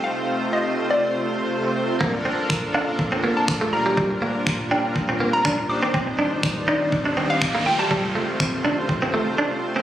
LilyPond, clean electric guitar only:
\new Staff \with { instrumentName = "Clean electric guitar" } { \time 4/4 \key f \mixolydian \tempo 4 = 122 r1 | bes16 r16 c'16 r8. d'16 r8 c'16 bes16 r8 a16 r16 g16 | g16 r16 bes16 r8. d'16 r8 c'16 bes16 r16 d'16 r8 c'16 | c'16 r16 d'16 r8. ees'16 r8 d'16 c'16 r8 bes16 r16 g16 |
g16 r16 a16 r8. d'16 r8 c'16 a16 r16 d'16 r8 c'16 | }